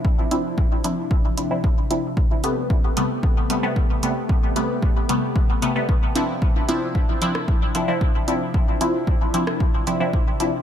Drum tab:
HH |--x---x---x---x-|--x---x---x---x-|--x---x---x---x-|--x---x---x---x-|
SD |----------------|----------------|----------------|-------r--------|
BD |o---o---o---o---|o---o---o---o---|o---o---o---o---|o---o---o---o---|

HH |--x---x---x---x-|
SD |-------r--------|
BD |o---o---o---o---|